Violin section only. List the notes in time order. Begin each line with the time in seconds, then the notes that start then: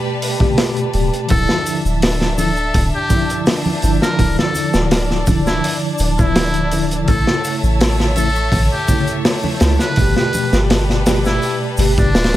Already playing: G3 G4 B4 A5
1.30 D4 E5
4.18 D5
7.08 A3 C#5 E5
9.97 G3 G4 B4